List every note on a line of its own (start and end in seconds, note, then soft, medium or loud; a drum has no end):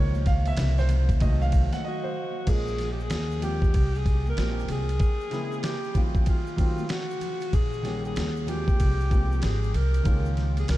0.00 0.55 C#2 loud
0.00 0.54 D#3 medium
0.00 0.54 F3 medium
0.00 0.55 A#3 medium
0.00 0.24 C#5 loud
0.15 high conga medium
0.15 maracas soft
0.26 0.48 F5 loud
0.26 kick medium
0.26 snare soft
0.26 ride medium
0.26 low conga medium
0.26 maracas medium
0.46 0.80 E5 loud
0.46 ride soft
0.46 high conga soft
0.46 maracas soft
0.57 1.18 C2 loud
0.57 1.18 C#3 medium
0.57 1.18 E3 medium
0.57 1.18 A#3 medium
0.57 snare loud
0.57 hi-hat pedal medium
0.57 ride medium
0.57 maracas medium
0.78 1.08 C5 loud
0.78 snare soft
0.78 maracas medium
0.89 ride medium
0.89 high conga medium
0.89 low conga medium
0.89 maracas medium
1.09 kick loud
1.09 ride medium
1.09 maracas soft
1.20 1.71 C2 loud
1.20 2.11 D#3 medium
1.20 2.12 F#3 medium
1.20 2.12 A3 medium
1.20 1.42 D#5 loud
1.20 kick loud
1.20 ride medium
1.20 maracas medium
1.42 1.74 F5 loud
1.42 maracas soft
1.52 kick medium
1.52 ride medium
1.52 maracas medium
1.73 1.85 F#5 loud
1.73 muted upright bass stroke medium
1.73 snare soft
1.73 ride soft
1.73 high conga medium
1.73 maracas medium
1.84 2.51 F#4 medium
1.84 2.05 D#5 loud
2.04 2.34 C5 medium
2.46 3.08 A#1 medium
2.46 2.86 F3 medium
2.46 2.87 G#3 medium
2.46 2.87 A#3 medium
2.46 2.88 C#4 medium
2.46 2.88 G#4 medium
2.46 2.91 G#4 loud
2.46 kick loud
2.46 crash medium
2.46 ride medium
2.46 maracas medium
2.68 maracas soft
2.78 snare soft
2.78 ride medium
2.78 low conga medium
2.78 maracas soft
2.92 3.03 G4 medium
3.00 3.46 G#4 loud
3.00 maracas soft
3.10 3.71 D#2 loud
3.10 snare loud
3.10 hi-hat pedal soft
3.10 ride medium
3.10 maracas medium
3.32 maracas soft
3.40 3.66 F3 medium
3.40 3.66 G#3 medium
3.40 3.67 A#3 medium
3.40 3.67 C4 medium
3.40 3.68 G4 medium
3.40 3.98 G4 loud
3.40 ride medium
3.40 high conga soft
3.40 low conga medium
3.40 maracas medium
3.62 kick loud
3.62 maracas soft
3.74 4.34 C2 loud
3.74 kick medium
3.74 ride medium
3.74 maracas medium
3.95 4.27 G#4 loud
3.95 maracas soft
4.06 kick medium
4.06 ride medium
4.06 maracas medium
4.26 4.68 A#4 loud
4.26 high conga medium
4.26 maracas soft
4.35 4.67 A#1 medium
4.35 4.84 F3 medium
4.35 4.85 G#3 medium
4.35 4.85 A#3 medium
4.35 4.85 C4 medium
4.35 4.86 G4 medium
4.35 snare loud
4.35 hi-hat pedal medium
4.35 ride medium
4.35 maracas medium
4.59 maracas soft
4.68 4.99 C2 loud
4.68 5.66 G#4 loud
4.68 ride medium
4.68 low conga medium
4.68 maracas medium
4.89 ride soft
4.89 maracas soft
5.00 kick loud
5.00 ride medium
5.00 maracas medium
5.21 maracas soft
5.30 5.71 C#3 medium
5.30 5.71 G#3 medium
5.30 5.71 A#3 medium
5.30 5.72 C4 medium
5.30 5.72 E4 medium
5.30 snare soft
5.30 ride soft
5.30 low conga medium
5.30 maracas soft
5.52 maracas soft
5.63 6.01 G4 loud
5.63 snare loud
5.63 hi-hat pedal medium
5.63 ride medium
5.63 maracas medium
5.84 maracas soft
5.94 6.34 D#3 medium
5.94 6.34 F#3 medium
5.94 6.35 A3 medium
5.94 6.35 C4 medium
5.94 6.36 F4 medium
5.94 kick medium
5.94 ride medium
5.94 high conga soft
5.94 low conga medium
5.94 maracas medium
6.15 kick medium
6.15 maracas soft
6.26 6.93 F4 medium
6.26 kick medium
6.26 ride medium
6.26 maracas medium
6.47 maracas soft
6.56 6.82 D#3 medium
6.56 6.82 F#3 medium
6.56 6.83 A3 medium
6.56 6.83 C4 medium
6.56 6.83 F4 medium
6.56 kick medium
6.56 ride medium
6.56 maracas soft
6.78 high conga medium
6.78 maracas soft
6.89 7.56 F#4 medium
6.89 snare loud
6.89 hi-hat pedal medium
6.89 ride medium
6.89 maracas medium
7.11 maracas soft
7.21 ride medium
7.21 low conga medium
7.21 maracas medium
7.41 ride soft
7.41 maracas medium
7.53 8.13 A#1 loud
7.53 8.05 G#4 loud
7.53 kick loud
7.53 ride medium
7.53 maracas medium
7.73 maracas soft
7.82 8.23 D#3 medium
7.82 8.24 G3 medium
7.82 8.24 A#3 medium
7.82 8.24 C#4 medium
7.82 8.25 G4 medium
7.82 snare soft
7.82 ride medium
7.82 low conga medium
7.82 maracas soft
8.05 8.51 G#4 medium
8.05 maracas soft
8.16 8.66 D#2 loud
8.16 snare loud
8.16 hi-hat pedal soft
8.16 ride medium
8.16 maracas medium
8.36 maracas soft
8.45 8.94 F3 medium
8.45 8.95 G#3 medium
8.45 8.95 A#3 soft
8.45 8.96 C4 medium
8.45 8.57 F#4 medium
8.45 9.46 G4 loud
8.45 ride medium
8.45 high conga medium
8.45 low conga medium
8.45 maracas medium
8.55 8.99 G4 medium
8.68 muted upright bass stroke soft
8.68 kick medium
8.68 maracas soft
8.80 9.40 C2 loud
8.80 kick medium
8.80 ride medium
8.80 maracas medium
9.00 maracas soft
9.10 9.50 F3 medium
9.10 9.50 G#3 medium
9.10 9.51 A#3 medium
9.10 9.51 C4 medium
9.10 9.51 G4 medium
9.10 kick medium
9.10 ride medium
9.10 maracas medium
9.32 high conga medium
9.32 maracas soft
9.42 9.73 G#1 medium
9.42 9.77 G#4 medium
9.42 snare loud
9.42 hi-hat pedal medium
9.42 ride medium
9.42 maracas medium
9.64 maracas soft
9.74 10.04 C2 loud
9.74 10.30 A#4 loud
9.74 ride medium
9.74 low conga medium
9.74 maracas medium
9.94 ride soft
9.94 maracas medium
10.03 10.66 C#2 loud
10.03 10.52 D#3 medium
10.03 10.53 G#3 medium
10.03 10.53 A#3 medium
10.03 10.53 C#4 medium
10.03 10.54 F4 medium
10.03 kick loud
10.03 ride medium
10.03 maracas medium
10.25 high conga medium
10.25 maracas soft
10.37 snare soft
10.37 ride soft
10.37 low conga medium
10.37 maracas soft
10.57 10.69 G#4 medium
10.57 ride soft
10.57 high conga soft
10.57 maracas soft
10.68 10.78 C2 loud
10.68 10.78 A#4 loud
10.68 snare loud
10.68 hi-hat pedal medium
10.68 ride medium
10.68 maracas medium